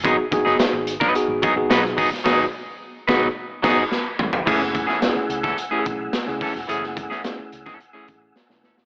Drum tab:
CC |----------------|x---------x-----|x---------------|----------------|
HH |x-x-x-x-x-x-x-o-|----------------|--x-x-x-x-x-x-o-|x-x-x-x-x-x-----|
SD |---oo--o----oo-o|o-----o---o-o---|-o-oo--o----oo-o|-o-oo--o----oooo|
T2 |----------------|--------------o-|----------------|----------------|
FT |----------------|---------------o|----------------|----------------|
BD |o-o----o--o---o-|o-----o---o-----|o-o----o--o---o-|--o----o--o-----|